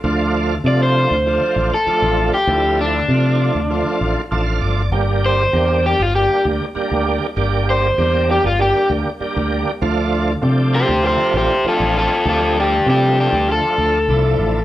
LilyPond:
<<
  \new Staff \with { instrumentName = "Overdriven electric guitar" } { \time 4/4 \key d \minor \tempo 4 = 98 r4 d''16 c''4. a'4 g'16~ | g'8 d'2 r4. | r8 c''4 g'16 f'16 g'8 r4. | r8 c''4 g'16 f'16 g'8 r4. |
r4. <g' c''>8 <g' c''>8 <g' c''>8 <f' a'>8 <f' a'>8 | <f' a'>8 <d' g'>8 <d' g'>8 <d' g'>8 a'2 | }
  \new Staff \with { instrumentName = "Tonewheel organ" } { \time 4/4 \key d \minor << { r1 | r2. a''16 f''16 d''8 | r1 | r1 |
r1 | r1 | } \\ { <f a d' f'>4 <f a d' f'>4 <f a d' f'>4 <f a d' f'>4 | <f a d' e'>4 <f a d' f'>4 <f a d' f'>4 <f a d' f'>4 | <g bes d' g'>4 <g bes d' g'>4 <g bes d' g'>4 <g bes d' g'>4 | <g bes d' g'>4 <g bes d' g'>4 <g bes d' g'>4 <g bes d' g'>4 |
<f a d' f'>4 <f a d' g'>4 <f a d' f'>4 <f a d' f'>4 | <f a d' g'>4 <f a d' g'>4 <f a d' f'>4 <f a d' e'>4 | } >> }
  \new Staff \with { instrumentName = "Fingered electric bass" } { \clef bass \time 4/4 \key d \minor d,4 c8. d,8 r16 a,,16 r8 a,,8 r16 | d,4 c8. d,8 r16 a,,16 r16 a,,8 g,,8 | g,,4 e,8. g,,8 r16 d,16 r8 d,8 r16 | g,,4 e,8. g,,8 r16 d,16 r8 d,8 r16 |
d,4 c8. d,8 r16 a,,16 r8 a,,8 r16 | d,4 c8. d,8 r16 d,8 c,8 a,,8 | }
>>